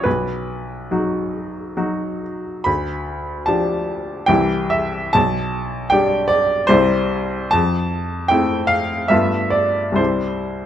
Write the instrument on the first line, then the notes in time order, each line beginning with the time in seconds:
upright piano
0.04 B1 B4
0.91 F#3 D#4 F#4
1.77 F#3 D#4 F#4
2.64 D2 B5
3.46 F3 D4 G4 A5
4.26 C2 E3 E4 G4 G5
4.70 E5
5.13 B1 A5
5.90 G3 D4 G4 G5
6.28 D5
6.67 C2 G3 C4 E4 C5
7.51 F2 A5
8.28 A3 C4 E4 G5
8.67 F5
9.08 G2 A3 B3 F4 E5
9.50 D5
9.92 C2 G3 C4 E4 C5